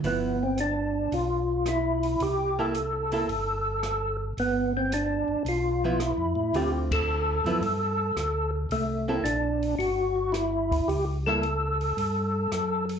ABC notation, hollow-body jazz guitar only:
X:1
M:4/4
L:1/8
Q:"Swing" 1/4=111
K:G
V:1 name="Hollow-body jazz guitar"
[=F,B,E] z6 z | z [_B,EA] z [B,EA] z4 | z4 z [=F,B,E] z2 | [D,A,C=F]3 [=F,B,E] z4 |
z [_B,EA] z6 | z [G,^A,E] z6 |]